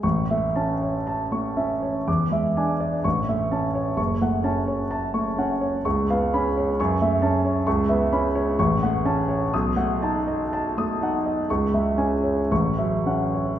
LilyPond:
<<
  \new Staff \with { instrumentName = "Grand piano" } { \time 2/4 \key a \major \tempo 4 = 62 cis'''16 e''16 a''16 cis''16 a''16 cis'''16 e''16 cis''16 | d'''16 e''16 gis''16 d''16 cis'''16 e''16 a''16 cis''16 | cis'''16 fis''16 a''16 cis''16 a''16 cis'''16 fis''16 cis''16 | cis'''16 eis''16 b''16 cis''16 cis'''16 e''16 a''16 cis''16 |
\key fis \dorian cis'''16 e''16 b''16 cis''16 cis'''16 fis''16 a''16 cis''16 | dis'''16 fis''16 a''16 dis''16 a''16 dis'''16 fis''16 dis''16 | cis'''16 e''16 gis''16 cis''16 cis'''16 e''16 fis''16 cis''16 | }
  \new Staff \with { instrumentName = "Grand piano" } { \time 2/4 \key a \major a,,16 a16 cis'8 r16 a16 cis'8 | e,16 gis16 d'8 a,,16 a16 cis'8 | fis,,16 a16 cis'8 r16 a16 cis'8 | cis,16 b16 cis'8 fis,16 a16 cis'8 |
\key fis \dorian cis,16 b16 cis'8 a,,16 a16 cis'8 | b,,16 a16 dis'8 r16 a16 dis'8 | cis,16 gis16 cis'8 a,,16 fis16 cis'8 | }
>>